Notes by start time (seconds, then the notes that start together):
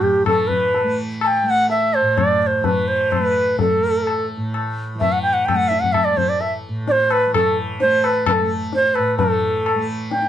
Already playing: A2 E3 A3
0.03 G4, tabla ge
0.23 E3 A4, tabla na, tabla ge
0.48 B4, tabla ge
0.74 tabla tin
0.84 A3
1.21 A5, tabla na
1.27 G5
1.43 A3 G5
1.50 F#5
1.70 E5, tabla tin
1.94 C5, tabla na
2.02 A2
2.18 D5, tabla na, tabla ge
2.42 D5
2.47 C5
2.61 E3, tabla tin, tabla ge
2.65 B4
2.88 C5
3.11 C5, tabla na, tabla ge
3.19 A3 B4
3.59 A4, tabla tin, tabla ge
3.79 A3
4.07 tabla na
4.37 A2
4.54 tabla na
4.95 E3
5.00 E5, tabla tin, tabla ge
5.12 F#5
5.22 G5
5.33 F#5
5.45 G5, tabla na, tabla ge
5.53 A3 F#5
5.68 E5, tabla te
5.80 F#5, tabla ge
5.92 E5, tabla na, tabla ge
6.05 D5
6.11 A3
6.17 C5, tabla ge
6.29 D5
6.41 E5, tabla tin
6.69 A2
6.88 D5, tabla te
6.92 C5
7.10 B4, tabla na
7.26 E3
7.34 A4, tabla na, tabla ge
7.80 A3 C5, tabla te
8.04 B4, tabla na
8.26 B4, tabla na, tabla ge
8.32 A4
8.41 A3
8.73 C5, tabla te
8.95 A2 B4, tabla na
9.18 E3 A4, tabla tin, tabla ge
9.66 tabla na
9.76 A3
10.11 G5, tabla te
10.22 tabla te